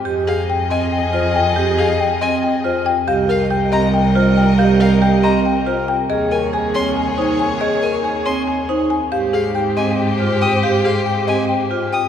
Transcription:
X:1
M:7/8
L:1/8
Q:1/4=139
K:Ab
V:1 name="Violin"
z f z a z3 | z f z a z3 | z f z b z3 | z f z b z3 |
z a z c' z3 | z a z c' z3 | z f z a z2 e' | z f z a z2 e' |]
V:2 name="Marimba"
z A g e g c g | z A g e g c g | f B g e g c g | f B g e g c g |
e B a d a c a | e B a d a c a | f A g e g c g | f A g e g c g |]
V:3 name="Violin section"
[Ae]6- [Ae]- | [Ae]6 z | [Be]6- [Be]- | [Be]6 z |
[Ad]6- [Ad]- | [Ad]6 z | [Gc]6- [Gc]- | [Gc]6 z |]
V:4 name="Vibraphone"
G z2 C z F z | G z2 C z F z | G z G C z F z | G z G C z F z |
A z A C z E z | A z A C z E z | G z G C z F z | G z G C z F z |]
V:5 name="Cello" clef=bass
F,,6- F,,- | F,,6- F,, | C,,6- C,,- | C,,6- C,, |
E,,6- E,,- | E,,6- E,, | A,,6- A,,- | A,,6- A,, |]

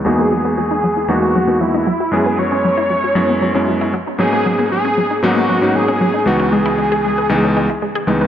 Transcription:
X:1
M:4/4
L:1/16
Q:1/4=116
K:G#m
V:1 name="Analog synth lead"
G4 G4 F4 E4 | G2 c12 z2 | G4 G4 F4 G4 | F2 G12 z2 |]
V:2 name="Electric grand piano"
[E,,G,A,B,DF]8 [E,,G,A,B,DF]3 [E,,G,A,B,DF]3 z2 | [F,,G,B,CE]8 [F,,G,B,CE]3 [F,,G,B,CE]3 z2 | [G,,F,A,B,CD]8 [G,,F,A,B,CD]3 [G,,F,A,B,CD]4- [G,,F,A,B,CD] | [C,,E,G,B,D]8 [C,,E,G,B,D]3 z3 [C,,E,G,B,D]2 |]
V:3 name="Synth arpeggio sound"
F, A, F, B, F, D F, E F, A, F, B, F, D F, F | F, B, F, C F, E F, F F, B, F, C F, E F, D | F, A, F, B, F, C F, D F, A, F, B, F, C F, D | G, C G, E G, G G, B G, C G, E G, G G, B |]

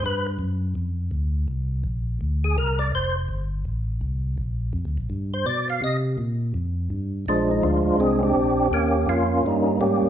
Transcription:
X:1
M:4/4
L:1/8
Q:"Swing" 1/4=166
K:Bbmix
V:1 name="Tonewheel organ"
_c z6 z | z4 z A B d | c z6 z | z4 z c d f |
e z6 z | D E F2 A G3 | G2 F2 E2 G2 |]
V:2 name="Tonewheel organ"
z8 | z8 | z8 | z8 |
z8 | [F,A,]2 [A,D]2 [CD] [CD]3 | [B,_D]2 [B,D]2 [G,B,]2 [B,D]2 |]
V:3 name="Tonewheel organ" clef=bass
G,,2 _G,,2 F,,2 D,,2 | C,,2 B,,,2 D,,2 C,,2 | F,,,2 G,,,2 =A,,,2 C,,2 | B,,,2 (3F,, D,, B,,, G,,2 =B,,2 |
C,2 B,,2 F,,2 G,,2 | B,,,2 D,, D,, C,,2 B,,,2 | E,,2 F,,2 G,,2 A,, A,, |]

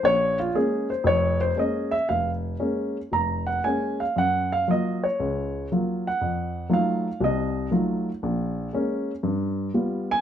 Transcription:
X:1
M:4/4
L:1/8
Q:"Swing" 1/4=118
K:Bbm
V:1 name="Grand piano"
d F A c d c e =e | f z3 b g a f | g f e d3 z g- | g2 f2 e2 z2 |
z6 z a |]
V:2 name="Grand piano" clef=bass
B,,,2 [A,B,D] z [F,,,F,,]2 [A,B,D] z | F,,,2 [A,B,D] z F,,,2 [A,B,D] z | G,,2 [G,B,F] z D,,2 [G,B,F] z | F,,2 [G,=A,EF] z [C,,C,]2 [G,A,EF] z |
B,,,2 [A,B,D] z =G,,2 [=G,=B,F] z |]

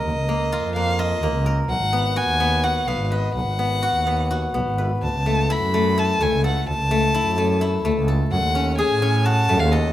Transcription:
X:1
M:7/8
L:1/16
Q:1/4=127
K:Cblyd
V:1 name="Violin"
e6 f2 e4- e/2 z3/2 | ^f4 a4 f2 =f3/2 f/2 ^d2 | ^f12 z2 | =a4 c'4 a2 _a2 ^f2 |
=a12 z2 | g4 a4 =a3 f e2 |]
V:2 name="Guzheng"
z2 B,2 F2 B,2 F2 B,2 B2 | z2 =B,2 ^F2 B,2 F2 B,2 =B2 | z2 =B,2 ^F2 B,2 F2 B,2 =B2 | z2 =A,2 =E2 A,2 E2 A,2 =A2 |
z2 =A,2 =E2 A,2 E2 A,2 =A2 | z2 D2 A2 D2 G2 =A,2 =A2 |]
V:3 name="Double bass" clef=bass
E,, D,,4 F,,4- F,, E,, D,,3 | =B,,, A,,,4 ^D,,4- D,, B,,, A,,,3 | =B,,, A,,,4 ^D,,4- D,, B,,, A,,,3 | =D,, _D,,4 ^F,,4- F,, =D,, _D,,3 |
=D,, _D,,4 ^F,,4- F,, =D,, _D,,3 | G,, E,,4 =A,,4- A,, G,, E,,3 |]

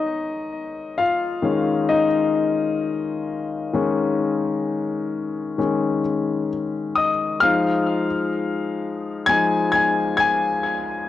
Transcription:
X:1
M:4/4
L:1/8
Q:1/4=65
K:Fm
V:1 name="Grand piano"
[Ee]2 [Ff]2 [Ee]4- | [Ee]6 z [ee'] | [ff']4 [aa'] [aa'] [aa']2 |]
V:2 name="Grand piano" clef=bass
z3 [E,A,D] z4 | [E,A,D]4 [E,A,D] z3 | [F,A,E] z3 [F,A,E] z3 |]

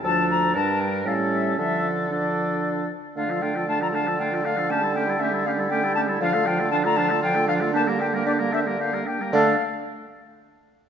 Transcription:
X:1
M:3/4
L:1/16
Q:1/4=116
K:Dm
V:1 name="Flute"
a2 b2 a2 g2 f2 e2 | e3 z d6 z2 | f2 g2 a b a2 g2 f2 | a2 g2 e2 f2 g2 a2 |
f2 g2 a b a2 g2 f2 | a2 g2 d2 e2 f2 g2 | f2 z8 z2 |]
V:2 name="Oboe"
A4 B4 A4 | A4 A6 z2 | F A F A F A F A F A F A | G A G A G A G A G A G A |
F A F A F A F A F A F A | G B G B G B G B G B G B | A2 z8 z2 |]
V:3 name="Clarinet"
D4 D4 ^C4 | D4 D6 z2 | D F D F D F D F D F D F | ^C E C E C E C E C E C E |
D F D F D F D F D F D F | D B, D B, D B, D B, D B, D B, | D2 z8 z2 |]
V:4 name="French horn" clef=bass
F,4 G,4 G,4 | F,4 F,6 z2 | A, F, A, F, A, F, A, F, A, F, A, F, | A, G, A, G, A, G, A, G, A, G, A, G, |
F, A, F, A, F, A, F, A, F, A, F, A, | B, G, B, G, B, G, B, G, B, G, B, G, | A,2 z8 z2 |]
V:5 name="Bassoon" clef=bass
D,,4 G,,4 A,,4 | D,8- D,2 z2 | D,12- | D,12 |
D,12- | D,8- D,2 z2 | D,2 z8 z2 |]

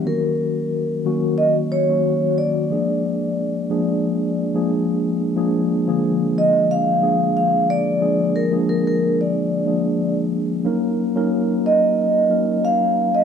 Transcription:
X:1
M:4/4
L:1/16
Q:"Swing 16ths" 1/4=91
K:Bbphr
V:1 name="Vibraphone"
B8 e2 d4 =d2- | =d12 z4 | z6 e2 f4 f2 =d2- | =d2 B2 B B2 d6 z3 |
z6 e6 f3 e |]
V:2 name="Tine electric piano"
[E,G,B,DG]4- [E,G,B,DG] z [E,G,B,DG]4 z [E,G,B,DG]4 z | [F,A,B,=DA]4- [F,A,B,DA] z [F,A,B,DA]4 z [F,A,B,DA]4 z | [F,A,B,=DA]2 z [=D,F,A,B,A]6 z [F,A,B,DA]4- [F,A,B,DA] z | [F,A,B,=DA]2 z [F,A,B,DA]6 z [F,A,B,DA]4- [F,A,B,DA] z |
[G,B,DEB]2 z [G,B,DEB]6 z [G,B,DEB]4- [G,B,DEB] z |]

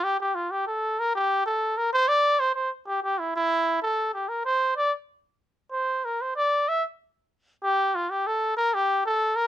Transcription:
X:1
M:12/8
L:1/8
Q:3/8=127
K:Gdor
V:1 name="Muted trumpet"
G G F G A2 B G2 A2 B | c d2 c c z G G E E3 | A2 G B c2 d z4 z | c2 B c d2 e z4 z |
G2 F G A2 B G2 A2 B |]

